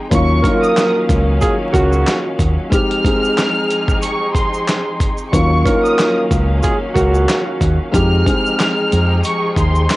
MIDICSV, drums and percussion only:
0, 0, Header, 1, 2, 480
1, 0, Start_track
1, 0, Tempo, 652174
1, 85, Time_signature, 4, 2, 24, 8
1, 7334, End_track
2, 0, Start_track
2, 0, Title_t, "Drums"
2, 83, Note_on_c, 9, 36, 119
2, 88, Note_on_c, 9, 42, 109
2, 88, Note_on_c, 9, 82, 74
2, 157, Note_off_c, 9, 36, 0
2, 161, Note_off_c, 9, 42, 0
2, 161, Note_off_c, 9, 82, 0
2, 323, Note_on_c, 9, 36, 93
2, 329, Note_on_c, 9, 82, 46
2, 332, Note_on_c, 9, 42, 76
2, 396, Note_off_c, 9, 36, 0
2, 403, Note_off_c, 9, 82, 0
2, 406, Note_off_c, 9, 42, 0
2, 469, Note_on_c, 9, 82, 53
2, 543, Note_off_c, 9, 82, 0
2, 567, Note_on_c, 9, 39, 101
2, 569, Note_on_c, 9, 42, 79
2, 572, Note_on_c, 9, 82, 71
2, 573, Note_on_c, 9, 38, 122
2, 640, Note_off_c, 9, 39, 0
2, 642, Note_off_c, 9, 42, 0
2, 646, Note_off_c, 9, 38, 0
2, 646, Note_off_c, 9, 82, 0
2, 803, Note_on_c, 9, 36, 103
2, 807, Note_on_c, 9, 42, 74
2, 808, Note_on_c, 9, 82, 52
2, 877, Note_off_c, 9, 36, 0
2, 881, Note_off_c, 9, 42, 0
2, 882, Note_off_c, 9, 82, 0
2, 1040, Note_on_c, 9, 82, 73
2, 1047, Note_on_c, 9, 36, 92
2, 1047, Note_on_c, 9, 42, 101
2, 1113, Note_off_c, 9, 82, 0
2, 1121, Note_off_c, 9, 36, 0
2, 1121, Note_off_c, 9, 42, 0
2, 1279, Note_on_c, 9, 36, 90
2, 1285, Note_on_c, 9, 42, 65
2, 1288, Note_on_c, 9, 82, 50
2, 1352, Note_off_c, 9, 36, 0
2, 1359, Note_off_c, 9, 42, 0
2, 1361, Note_off_c, 9, 82, 0
2, 1418, Note_on_c, 9, 82, 51
2, 1492, Note_off_c, 9, 82, 0
2, 1524, Note_on_c, 9, 39, 89
2, 1525, Note_on_c, 9, 82, 74
2, 1528, Note_on_c, 9, 42, 81
2, 1530, Note_on_c, 9, 38, 111
2, 1598, Note_off_c, 9, 39, 0
2, 1598, Note_off_c, 9, 82, 0
2, 1602, Note_off_c, 9, 42, 0
2, 1604, Note_off_c, 9, 38, 0
2, 1760, Note_on_c, 9, 36, 93
2, 1764, Note_on_c, 9, 82, 54
2, 1768, Note_on_c, 9, 42, 82
2, 1834, Note_off_c, 9, 36, 0
2, 1837, Note_off_c, 9, 82, 0
2, 1842, Note_off_c, 9, 42, 0
2, 2003, Note_on_c, 9, 36, 121
2, 2007, Note_on_c, 9, 42, 106
2, 2007, Note_on_c, 9, 82, 75
2, 2076, Note_off_c, 9, 36, 0
2, 2080, Note_off_c, 9, 42, 0
2, 2081, Note_off_c, 9, 82, 0
2, 2142, Note_on_c, 9, 42, 60
2, 2216, Note_off_c, 9, 42, 0
2, 2242, Note_on_c, 9, 36, 95
2, 2248, Note_on_c, 9, 82, 50
2, 2251, Note_on_c, 9, 42, 80
2, 2316, Note_off_c, 9, 36, 0
2, 2322, Note_off_c, 9, 82, 0
2, 2324, Note_off_c, 9, 42, 0
2, 2389, Note_on_c, 9, 82, 53
2, 2463, Note_off_c, 9, 82, 0
2, 2485, Note_on_c, 9, 39, 100
2, 2488, Note_on_c, 9, 42, 81
2, 2491, Note_on_c, 9, 38, 120
2, 2492, Note_on_c, 9, 82, 69
2, 2559, Note_off_c, 9, 39, 0
2, 2561, Note_off_c, 9, 42, 0
2, 2565, Note_off_c, 9, 38, 0
2, 2566, Note_off_c, 9, 82, 0
2, 2727, Note_on_c, 9, 42, 70
2, 2729, Note_on_c, 9, 82, 52
2, 2800, Note_off_c, 9, 42, 0
2, 2802, Note_off_c, 9, 82, 0
2, 2856, Note_on_c, 9, 36, 101
2, 2863, Note_on_c, 9, 82, 46
2, 2930, Note_off_c, 9, 36, 0
2, 2937, Note_off_c, 9, 82, 0
2, 2961, Note_on_c, 9, 82, 75
2, 2966, Note_on_c, 9, 42, 106
2, 3034, Note_off_c, 9, 82, 0
2, 3040, Note_off_c, 9, 42, 0
2, 3199, Note_on_c, 9, 36, 87
2, 3206, Note_on_c, 9, 42, 65
2, 3209, Note_on_c, 9, 82, 50
2, 3272, Note_off_c, 9, 36, 0
2, 3279, Note_off_c, 9, 42, 0
2, 3282, Note_off_c, 9, 82, 0
2, 3339, Note_on_c, 9, 82, 49
2, 3413, Note_off_c, 9, 82, 0
2, 3444, Note_on_c, 9, 39, 91
2, 3446, Note_on_c, 9, 82, 75
2, 3448, Note_on_c, 9, 42, 84
2, 3450, Note_on_c, 9, 38, 111
2, 3518, Note_off_c, 9, 39, 0
2, 3520, Note_off_c, 9, 82, 0
2, 3522, Note_off_c, 9, 42, 0
2, 3524, Note_off_c, 9, 38, 0
2, 3680, Note_on_c, 9, 36, 98
2, 3683, Note_on_c, 9, 82, 56
2, 3689, Note_on_c, 9, 42, 82
2, 3754, Note_off_c, 9, 36, 0
2, 3757, Note_off_c, 9, 82, 0
2, 3762, Note_off_c, 9, 42, 0
2, 3808, Note_on_c, 9, 82, 53
2, 3882, Note_off_c, 9, 82, 0
2, 3923, Note_on_c, 9, 36, 118
2, 3927, Note_on_c, 9, 42, 107
2, 3928, Note_on_c, 9, 82, 73
2, 3996, Note_off_c, 9, 36, 0
2, 4001, Note_off_c, 9, 42, 0
2, 4002, Note_off_c, 9, 82, 0
2, 4162, Note_on_c, 9, 36, 96
2, 4168, Note_on_c, 9, 82, 50
2, 4171, Note_on_c, 9, 42, 78
2, 4236, Note_off_c, 9, 36, 0
2, 4242, Note_off_c, 9, 82, 0
2, 4245, Note_off_c, 9, 42, 0
2, 4309, Note_on_c, 9, 82, 55
2, 4383, Note_off_c, 9, 82, 0
2, 4406, Note_on_c, 9, 39, 100
2, 4408, Note_on_c, 9, 42, 76
2, 4411, Note_on_c, 9, 82, 69
2, 4412, Note_on_c, 9, 38, 124
2, 4480, Note_off_c, 9, 39, 0
2, 4482, Note_off_c, 9, 42, 0
2, 4484, Note_off_c, 9, 82, 0
2, 4486, Note_off_c, 9, 38, 0
2, 4643, Note_on_c, 9, 36, 105
2, 4647, Note_on_c, 9, 42, 71
2, 4648, Note_on_c, 9, 82, 52
2, 4717, Note_off_c, 9, 36, 0
2, 4720, Note_off_c, 9, 42, 0
2, 4721, Note_off_c, 9, 82, 0
2, 4879, Note_on_c, 9, 82, 73
2, 4887, Note_on_c, 9, 42, 99
2, 4888, Note_on_c, 9, 36, 91
2, 4952, Note_off_c, 9, 82, 0
2, 4961, Note_off_c, 9, 36, 0
2, 4961, Note_off_c, 9, 42, 0
2, 5119, Note_on_c, 9, 36, 83
2, 5125, Note_on_c, 9, 42, 66
2, 5128, Note_on_c, 9, 82, 51
2, 5192, Note_off_c, 9, 36, 0
2, 5199, Note_off_c, 9, 42, 0
2, 5201, Note_off_c, 9, 82, 0
2, 5258, Note_on_c, 9, 82, 48
2, 5332, Note_off_c, 9, 82, 0
2, 5364, Note_on_c, 9, 39, 90
2, 5364, Note_on_c, 9, 82, 75
2, 5368, Note_on_c, 9, 42, 84
2, 5370, Note_on_c, 9, 38, 113
2, 5438, Note_off_c, 9, 39, 0
2, 5438, Note_off_c, 9, 82, 0
2, 5442, Note_off_c, 9, 42, 0
2, 5444, Note_off_c, 9, 38, 0
2, 5601, Note_on_c, 9, 36, 94
2, 5603, Note_on_c, 9, 82, 55
2, 5608, Note_on_c, 9, 42, 83
2, 5674, Note_off_c, 9, 36, 0
2, 5676, Note_off_c, 9, 82, 0
2, 5682, Note_off_c, 9, 42, 0
2, 5843, Note_on_c, 9, 36, 119
2, 5847, Note_on_c, 9, 42, 108
2, 5847, Note_on_c, 9, 82, 75
2, 5917, Note_off_c, 9, 36, 0
2, 5921, Note_off_c, 9, 42, 0
2, 5921, Note_off_c, 9, 82, 0
2, 6083, Note_on_c, 9, 36, 93
2, 6088, Note_on_c, 9, 82, 48
2, 6092, Note_on_c, 9, 42, 78
2, 6156, Note_off_c, 9, 36, 0
2, 6161, Note_off_c, 9, 82, 0
2, 6165, Note_off_c, 9, 42, 0
2, 6228, Note_on_c, 9, 82, 52
2, 6301, Note_off_c, 9, 82, 0
2, 6326, Note_on_c, 9, 39, 101
2, 6328, Note_on_c, 9, 42, 79
2, 6331, Note_on_c, 9, 82, 74
2, 6332, Note_on_c, 9, 38, 122
2, 6400, Note_off_c, 9, 39, 0
2, 6402, Note_off_c, 9, 42, 0
2, 6404, Note_off_c, 9, 82, 0
2, 6406, Note_off_c, 9, 38, 0
2, 6568, Note_on_c, 9, 42, 71
2, 6568, Note_on_c, 9, 82, 52
2, 6641, Note_off_c, 9, 42, 0
2, 6641, Note_off_c, 9, 82, 0
2, 6799, Note_on_c, 9, 82, 73
2, 6808, Note_on_c, 9, 42, 102
2, 6873, Note_off_c, 9, 82, 0
2, 6881, Note_off_c, 9, 42, 0
2, 7040, Note_on_c, 9, 36, 88
2, 7047, Note_on_c, 9, 42, 65
2, 7048, Note_on_c, 9, 82, 49
2, 7113, Note_off_c, 9, 36, 0
2, 7120, Note_off_c, 9, 42, 0
2, 7122, Note_off_c, 9, 82, 0
2, 7179, Note_on_c, 9, 82, 49
2, 7252, Note_off_c, 9, 82, 0
2, 7285, Note_on_c, 9, 39, 92
2, 7285, Note_on_c, 9, 82, 71
2, 7290, Note_on_c, 9, 42, 85
2, 7291, Note_on_c, 9, 38, 114
2, 7334, Note_off_c, 9, 38, 0
2, 7334, Note_off_c, 9, 39, 0
2, 7334, Note_off_c, 9, 42, 0
2, 7334, Note_off_c, 9, 82, 0
2, 7334, End_track
0, 0, End_of_file